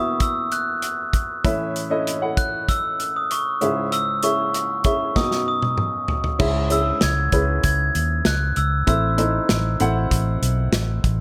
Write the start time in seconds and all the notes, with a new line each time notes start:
Already playing: E2 B2 B3 E4 F#4 E5 D#6
0.20 E6, kick, closed hi-hat
0.52 F#6, closed hi-hat
0.82 closed hi-hat
1.13 kick, closed hi-hat
1.44 A2 E3 C#4 E4 A4 E5, kick, closed hi-hat
1.76 closed hi-hat
1.90 C#4 E4 A4 D#5
2.07 closed hi-hat
2.21 C#4 E4 A4 F#5
2.37 F#6, kick, closed hi-hat
2.69 E6, kick, closed hi-hat
3.00 closed hi-hat
3.16 D#6
3.31 C#6, closed hi-hat
3.61 C#2 G#2 C#4 E4 G#4 E5, closed hi-hat
3.92 E6, closed hi-hat
4.23 C#4 E4 G#4 E5 C#6, closed hi-hat
4.54 closed hi-hat
4.84 C#4 E4 G#4 E5 C#6, kick, closed hi-hat
5.16 B1 F#2 B3 D#4 F#4 D#5 D#6, kick, snare
5.31 snare
5.48 D#6
5.62 high tom
5.78 mid tom
6.08 floor tom
6.24 floor tom
6.39 C#2 G#2 C#4 E4 G#4 E5, kick, crash
6.70 C#4 E4 G#4 E5 E6, closed hi-hat
7.01 C#2 G#6, snare, closed hi-hat
7.32 C#2 C#4 E4 G#4 B4, kick, closed hi-hat
7.64 C#2 G#6, kick, closed hi-hat
7.95 D#2, closed hi-hat
8.25 C#2 F#6, snare, closed hi-hat
8.56 C#2 E6, closed hi-hat
8.87 A1 C4 E4 A4 E5 E6, kick, closed hi-hat
9.18 C4 D#4 E4 A4, closed hi-hat
9.49 A1, snare, closed hi-hat
9.80 A1 C4 E4 A4 F#5, closed hi-hat
10.11 A1, kick, closed hi-hat
10.42 B1, closed hi-hat
10.72 A1, snare, closed hi-hat
11.04 A1, kick, closed hi-hat